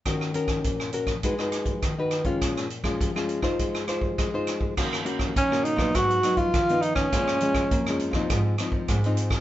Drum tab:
CC |----------------|----------------|x---------------|----------------|
HH |x-xxx-xxx-xxx-xx|xxx-x-x-xxx-x-x-|--x-x-x-xxxxxxx-|x-xxxxx-x-x-xxx-|
SD |rr-r-r-r-rr-r-r-|rr-r-r-r-rr-r-r-|rr-r-r-rr-r-r--r|rr-r-r-rr-r-r--r|
BD |o--oo--oo--oo--o|o--oo--oo--oo--o|o--oo--oo--oo--o|o--oo--oo--oo--o|